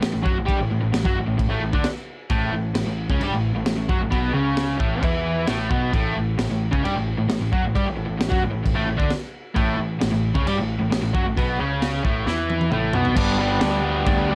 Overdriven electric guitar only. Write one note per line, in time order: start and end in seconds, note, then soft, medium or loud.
0.01 0.12 A2 medium
0.13 0.23 A2 medium
0.23 0.34 F#3 medium
0.23 0.36 F#4 medium
0.34 0.47 A2 medium
0.46 0.58 G3 medium
0.46 0.58 G4 loud
0.57 0.69 A2 medium
0.70 0.80 A2 medium
0.81 0.91 A2 medium
0.93 1.04 A2 medium
1.04 1.15 F#3 medium
1.04 1.16 F#4 loud
1.15 1.26 A2 medium
1.27 1.37 A2 medium
1.38 1.48 A2 medium
1.49 1.61 A2 medium
1.49 1.61 A3 loud
1.62 1.73 A2 medium
1.73 1.84 D3 medium
1.73 1.85 D4 loud
2.30 2.52 A2 medium
2.30 2.53 A3 medium
2.53 2.71 A2 medium
2.75 2.85 A2 medium
2.86 3.05 A2 medium
3.10 3.21 C#3 medium
3.10 3.21 C#4 medium
3.23 3.33 G3 medium
3.23 3.33 G4 medium
3.32 3.51 A2 medium
3.56 3.66 A2 medium
3.67 3.76 A2 medium
3.78 3.89 A2 medium
3.89 4.00 F#3 medium
3.89 4.01 F#4 loud
4.01 4.11 A2 medium
4.11 4.33 B2 medium
4.11 4.34 B3 medium
4.33 4.78 C#3 medium
4.33 4.80 C#4 medium
4.79 5.02 A2 medium
4.79 5.04 A3 medium
5.02 5.47 E3 medium
5.02 5.48 E4 medium
5.47 5.70 A2 medium
5.47 5.71 A3 medium
5.70 5.92 B2 medium
5.70 5.93 B3 loud
5.93 6.14 A2 medium
5.93 6.16 A3 medium
6.15 6.34 A2 medium
6.39 6.49 A2 medium
6.51 6.69 A2 medium
6.71 6.83 C#3 medium
6.71 6.83 C#4 medium
6.82 6.94 G3 medium
6.82 6.95 G4 medium
6.95 7.13 A2 medium
7.18 7.28 A2 medium
7.29 7.40 A2 medium
7.42 7.52 A2 medium
7.52 7.63 F#3 medium
7.52 7.63 F#4 loud
7.64 7.75 A2 medium
7.75 7.86 G3 medium
7.75 7.86 G4 loud
7.86 7.95 A2 medium
7.97 8.05 A2 medium
8.06 8.17 A2 medium
8.18 8.29 A2 medium
8.29 8.41 F#3 medium
8.29 8.41 F#4 loud
8.41 8.49 A2 medium
8.51 8.62 A2 medium
8.63 8.73 A2 medium
8.74 8.85 A2 medium
8.74 8.87 A3 loud
8.86 8.97 A2 medium
8.97 9.09 D3 medium
8.97 9.09 D4 loud
9.55 9.75 A2 medium
9.55 9.78 A3 medium
9.76 9.96 A2 medium
10.01 10.11 A2 medium
10.12 10.30 A2 medium
10.35 10.46 C#3 medium
10.35 10.46 C#4 medium
10.46 10.57 G3 medium
10.46 10.58 G4 medium
10.58 10.76 A2 medium
10.80 10.90 A2 medium
10.91 11.02 A2 medium
11.03 11.13 A2 medium
11.14 11.24 F#3 medium
11.14 11.25 F#4 loud
11.26 11.37 A2 medium
11.37 11.59 B2 medium
11.37 11.59 B3 loud
11.59 12.03 C#3 loud
11.59 12.04 C#4 loud
12.04 12.26 A2 medium
12.04 12.27 A3 loud
12.26 12.71 E3 medium
12.26 12.71 E4 medium
12.71 12.93 A2 medium
12.71 12.94 A3 medium
12.94 13.16 B2 medium
12.94 13.15 B3 medium
13.16 13.38 G3 medium
13.16 13.39 B3 medium
13.16 13.40 D4 loud
13.16 13.41 G4 medium
13.38 13.59 G3 medium
13.38 13.61 B3 loud
13.38 13.61 D4 loud
13.38 13.62 G4 loud
13.60 13.82 G3 medium
13.60 13.83 B3 medium
13.60 13.84 D4 loud
13.60 13.86 G4 loud
13.83 14.05 G3 medium
13.83 14.07 B3 medium
13.83 14.06 D4 medium
13.83 14.08 G4 loud
14.06 14.28 G3 medium
14.06 14.29 B3 medium
14.06 14.30 D4 medium
14.06 14.30 G4 medium
14.29 14.35 G3 medium
14.29 14.35 B3 medium
14.29 14.35 D4 loud
14.29 14.35 G4 loud